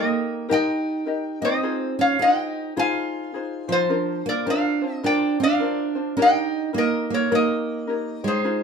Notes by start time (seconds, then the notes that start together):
Already playing: A#3 D#4 G4 A#4 D#5
0.49 D#4 G4 A#4 D#5 G5
0.54 D#5
1.06 D#4 G4 A#4 D#5
1.41 C4 D#4 G4 C5 D#5
1.63 D#4 F4 G#4 C5
1.99 C#4 C#5 F5
2.19 D#4 F4 G#4 C5 D#5 G5
2.76 D#4 F4 G#4 C5 F5 G#5
3.34 D#4 F4 G#4 C5
3.68 F3 D#4 F4 C5
3.72 F4 C5
3.89 D4 F4 A#4 C5
4.26 A#3 A#4 D5
4.46 D4 F4 A#4 C5
4.50 D5 F5
4.82 D4 F4 C5
4.88 C4
4.94 D#5
5.03 D4 F4 A#4 C5 D5 G5
5.40 D4 F5
5.44 D5
5.60 D4 F4 A#4 C5
5.95 D4 F4 C5
6.17 D#4 G4 A#4 C#5
6.22 D#5 G5
6.73 A#3 D#4 G4 A#4 C#5
6.78 A#4 D#5
7.10 A#3 A#4 C#5
7.31 A#3 D#4 G4 A#4 C#5 D#5
7.35 A#4
7.87 D#4 G4 A#4 C#5
8.24 G#3 D#4 G4 G#4 C#5
8.28 C5
8.44 D#4 F4 G#4 C5